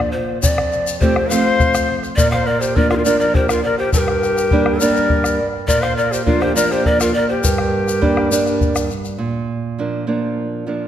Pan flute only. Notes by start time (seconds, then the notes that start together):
0.12 C5
0.42 D5
1.00 C5
1.29 F5
2.16 D5
2.31 F5
2.46 D5
2.60 C5
2.76 D5
2.90 A#4
2.95 G4 A#4
3.04 D5
3.19 D5
3.35 C5
3.49 A#4
3.63 D5
3.78 C5
3.94 A#4
4.81 D5
5.68 D5
5.82 F5
5.97 D5
6.12 C5
6.26 A#4
6.40 C5
6.55 D5
6.67 C5 D5
6.86 D5
7.01 A#4
7.14 D5
7.29 C5
7.43 A#4